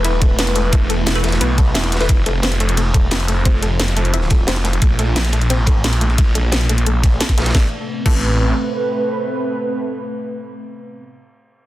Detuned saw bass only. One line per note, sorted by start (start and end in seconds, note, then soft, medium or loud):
0.00 0.12 E1 loud
0.12 0.37 D#1 loud
0.39 0.71 E1 loud
0.73 0.88 E1 loud
0.90 1.40 E1 medium
1.41 1.74 B1 loud
1.75 2.08 E1 loud
2.09 2.25 F1 loud
2.26 2.85 F1 loud
2.85 3.10 E1 loud
3.11 3.44 F1 loud
3.45 3.61 F1 loud
3.63 4.46 F1 loud
4.48 4.80 F1 medium
4.82 4.98 A#1 loud
4.99 5.58 A#1 loud
5.58 5.83 A1 loud
5.84 6.17 A#1 loud
6.18 6.34 A#1 medium
6.35 7.19 A#1 loud
7.38 7.53 A#1 medium
7.55 7.64 A1 loud
8.06 8.53 A1 loud